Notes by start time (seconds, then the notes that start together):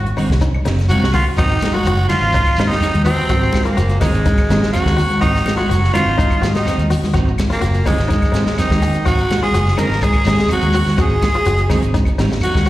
Already playing: G#1 F#4
0.06 muted clean electric guitar stroke, closed hi-hat
0.17 C4 D#4, muted clean electric guitar stroke, open hi-hat, high conga, low conga, claves, shekere
0.30 C2, muted clean electric guitar stroke, kick, snare
0.40 D#4, closed hi-hat, shekere
0.55 muted clean electric guitar stroke, claves
0.65 F#1 F#3 C4 D#4, snare, closed hi-hat, shekere
0.78 muted clean electric guitar stroke, snare, closed hi-hat
0.88 F#3 C4 D#4 F#4, closed hi-hat, high conga, claves, shekere
1.02 C2, snare
1.12 F3 F4 F#4, kick, open hi-hat, high conga, low conga, shekere
1.27 muted clean electric guitar stroke
1.36 G#1 D#3 F#3 C4 D#4 F#4, kick, closed hi-hat, claves, shekere
1.49 closed hi-hat, shekere
1.60 muted clean electric guitar stroke, closed hi-hat, high conga, claves, shekere
1.64 snare
1.72 F#3 F4 F#4, muted clean electric guitar stroke, high conga, shekere
1.84 F#1 F#4, muted clean electric guitar stroke, closed hi-hat, shekere
1.97 muted clean electric guitar stroke, shekere
2.09 F3 F#3 D#4 F4, muted clean electric guitar stroke, closed hi-hat, high conga, low conga, claves, shekere
2.21 G#1 C4 D#4, shekere
2.33 D#4, kick, closed hi-hat, shekere
2.45 muted clean electric guitar stroke, kick, closed hi-hat, claves, shekere
2.56 G#1 F#3 C4 D#4, snare, closed hi-hat, high conga, shekere
2.67 D#3 D#4, muted clean electric guitar stroke, closed hi-hat, shekere
2.72 snare
2.81 F#3 D#4, muted fingered electric bass stroke, snare, closed hi-hat, claves, shekere
2.94 D#2, closed hi-hat, high conga, shekere
3.04 C3 C4 F#4, muted clean electric guitar stroke, open hi-hat, low conga, shekere
3.17 low conga, shekere
3.29 G#1 F#3 C4 F#4, muted clean electric guitar stroke, kick, closed hi-hat, claves, shekere
3.43 shekere
3.52 muted clean electric guitar stroke, kick, snare, closed hi-hat, high conga, claves, shekere
3.64 A#2 A#3 F4, muted clean electric guitar stroke, closed hi-hat, high conga, shekere
3.77 F#1 F#4, muted clean electric guitar stroke, closed hi-hat, shekere
3.89 muted clean electric guitar stroke, closed hi-hat, shekere
4.00 G#2 F#3 G#3 C4 D#4, kick, snare, open hi-hat, high conga, low conga, claves, shekere
4.14 G#1 C4 D#4, closed hi-hat, shekere
4.25 D#4, kick, closed hi-hat, high conga, shekere
4.38 muted clean electric guitar stroke, kick, closed hi-hat, claves, shekere
4.49 G#1 F#3 C4 D#4, snare, closed hi-hat, high conga, shekere
4.62 muted clean electric guitar stroke, snare, shekere
4.72 F#3 C4 D#4 F#4, muted fingered electric bass stroke, closed hi-hat, claves, shekere
4.86 D#2, kick, snare, high conga, shekere
4.97 F#4, muted clean electric guitar stroke, open hi-hat, low conga, shekere
5.10 muted clean electric guitar stroke, closed hi-hat, high conga, shekere
5.20 G#1 D#3 C4 D#4 F#4, muted clean electric guitar stroke, kick, closed hi-hat, claves, shekere
5.35 snare, closed hi-hat, shekere
5.45 muted clean electric guitar stroke, snare, closed hi-hat, high conga, claves, shekere
5.56 F#3 F4 F#4, muted clean electric guitar stroke, high conga, shekere
5.69 F#1 F#4, muted clean electric guitar stroke, closed hi-hat, shekere
5.82 muted clean electric guitar stroke, snare, shekere
5.93 F3 F#3 C4 D#4 F4, closed hi-hat, high conga, low conga, claves, shekere
6.06 G#1 C4 D#4, shekere
6.18 D#4, kick, closed hi-hat, high conga, shekere
6.30 muted clean electric guitar stroke, kick, closed hi-hat, claves, shekere
6.42 G#1 F#3 F#4, snare, closed hi-hat, high conga, shekere
6.54 D#3 D#4, muted clean electric guitar stroke, snare, closed hi-hat, shekere
6.65 F#3 C4 D#4, muted fingered electric bass stroke, snare, closed hi-hat, claves, shekere
6.78 D#2, closed hi-hat, high conga, shekere
6.90 F#4, muted clean electric guitar stroke, open hi-hat, low conga, shekere
7.02 muted clean electric guitar stroke, snare, high conga, low conga, shekere
7.13 G#1 F#3 C4 D#4 F#4, kick, closed hi-hat, claves, shekere
7.28 shekere
7.38 muted clean electric guitar stroke, kick, snare, closed hi-hat, high conga, claves, shekere
7.50 A#2 A#3 F4, muted clean electric guitar stroke, snare, closed hi-hat, shekere
7.61 F#1 F#4, muted clean electric guitar stroke, closed hi-hat, shekere
7.74 muted clean electric guitar stroke, closed hi-hat, shekere
7.86 G#2 F#3 G#3 C4 D#4, muted clean electric guitar stroke, kick, open hi-hat, high conga, low conga, claves, shekere
7.90 G#3
7.98 G#1 C4 D#4, snare, closed hi-hat, shekere
8.08 D#4, kick, closed hi-hat, high conga, shekere
8.22 muted clean electric guitar stroke, kick, closed hi-hat, claves, shekere
8.32 G#1 F#3 C4 D#4, snare, closed hi-hat, high conga, shekere
8.46 muted clean electric guitar stroke, snare, shekere
8.57 D#3 F#3 C4 D#4, muted fingered electric bass stroke, snare, closed hi-hat, claves, shekere
8.70 D#2, kick, snare, high conga, shekere
8.81 G#4, muted clean electric guitar stroke, open hi-hat, low conga, shekere
8.94 muted clean electric guitar stroke, closed hi-hat, shekere
9.05 G#1 F#3 C4 D#4 F#4, kick, closed hi-hat, claves, shekere
9.09 F#4
9.19 closed hi-hat, shekere
9.29 muted clean electric guitar stroke, snare, closed hi-hat, high conga, claves, shekere
9.41 G#3 F4 G#4, muted clean electric guitar stroke, high conga, shekere
9.53 F#1 F#4, closed hi-hat, shekere
9.65 muted clean electric guitar stroke, snare, shekere
9.77 F#3 A#3 C4 D#4 A#4, closed hi-hat, high conga, low conga, claves, shekere
9.88 G#1 D#4, shekere
9.93 snare
10.02 G#3 D#4 G#4, kick, closed hi-hat, high conga, shekere
10.13 muted clean electric guitar stroke, kick, closed hi-hat, claves, shekere
10.24 G#1 F#3 C4 D#4, snare, closed hi-hat, high conga, shekere
10.36 muted clean electric guitar stroke, snare, closed hi-hat, shekere
10.48 F#3 C4 D#4 F#4, muted fingered electric bass stroke, closed hi-hat, claves, shekere
10.62 D#2, closed hi-hat, high conga, shekere
10.73 F#4, open hi-hat, low conga, shekere
10.85 muted clean electric guitar stroke, snare, high conga, low conga, shekere
10.96 G#1 F#3 G#3 C4 D#4 F#4 G#4, kick, closed hi-hat, claves, shekere
11.02 G#4
11.09 shekere
11.21 muted clean electric guitar stroke, kick, snare, closed hi-hat, high conga, claves, shekere
11.33 F4, muted clean electric guitar stroke, closed hi-hat, shekere
11.45 F#1 F#4, muted clean electric guitar stroke, closed hi-hat, shekere
11.58 muted clean electric guitar stroke, closed hi-hat, shekere
11.70 F#3 C4 D#4, kick, open hi-hat, high conga, low conga, claves, shekere
11.83 G#1 C4 D#4, closed hi-hat, shekere
11.94 D#4, kick, closed hi-hat, high conga, shekere
12.05 muted clean electric guitar stroke, kick, closed hi-hat, claves, shekere
12.18 G#1 F#3 C4 D#4, snare, closed hi-hat, high conga, shekere
12.30 muted clean electric guitar stroke, snare, shekere
12.40 F#3 D#4 F#4, muted fingered electric bass stroke, closed hi-hat, claves, shekere
12.54 D#2, kick, snare, high conga, shekere
12.65 F#4, shekere